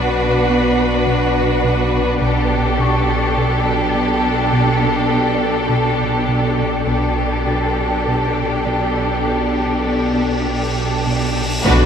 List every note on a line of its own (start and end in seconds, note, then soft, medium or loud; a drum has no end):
0.00 2.18 B1 soft
0.00 2.18 B1 medium
0.00 0.27 B2 medium
0.00 2.17 B2 medium
0.00 2.17 D4 soft
0.00 2.18 F#4 soft
0.00 2.18 B4 soft
0.00 2.18 D5 soft
0.00 2.18 F#5 soft
0.00 1.59 B6 soft
0.00 0.45 C7 soft
0.50 0.84 B3 medium
1.07 1.41 B2 medium
1.64 1.99 B2 medium
2.20 6.83 B1 medium
2.20 6.83 B1 soft
2.20 6.82 B2 medium
2.20 2.56 B2 medium
2.20 6.82 D4 soft
2.20 6.82 G4 soft
2.20 6.87 A4 soft
2.20 6.83 A4 medium
2.20 6.83 D5 soft
2.20 6.87 G5 soft
2.79 3.14 B2 medium
2.79 6.71 C#6 soft
3.37 3.72 B2 soft
3.95 4.29 B2 medium
4.53 4.87 B2 medium
5.11 5.46 B3 medium
5.69 6.04 B2 medium
6.28 6.64 B2 soft
6.86 11.40 B1 soft
6.86 11.60 B1 medium
6.86 7.23 B2 medium
6.86 11.41 B2 soft
6.86 11.40 D4 soft
6.86 11.40 G4 soft
6.86 11.41 A4 soft
6.86 11.62 A4 soft
6.86 11.62 D5 soft
6.86 11.61 G5 soft
6.86 cymbal swell soft
7.47 7.83 B2 medium
7.47 11.38 A6 soft
8.08 8.43 B2 soft
8.66 9.02 B2 medium
9.26 9.62 B2 soft
9.87 10.22 B3 soft
9.87 11.86 B6 soft
10.47 10.83 B2 medium
11.07 11.42 B2 soft
11.64 11.86 B1 medium
11.64 11.86 B2 medium
11.64 11.86 B2 loud
11.64 11.86 D4 medium
11.64 11.86 F#4 medium
11.64 11.86 B4 medium
11.64 11.86 D5 medium
11.64 11.86 F#5 medium
11.64 impact medium